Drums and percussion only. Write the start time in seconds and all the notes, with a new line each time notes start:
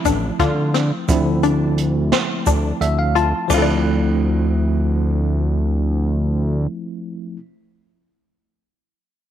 0.05 kick, closed hi-hat, shaker
0.39 kick, snare, closed hi-hat
0.74 snare, closed hi-hat
1.09 kick, closed hi-hat, shaker
1.43 closed hi-hat, shaker
1.78 closed hi-hat
2.12 snare, closed hi-hat
2.46 kick, closed hi-hat, shaker
2.81 closed hi-hat
3.16 closed hi-hat
3.50 kick, crash, shaker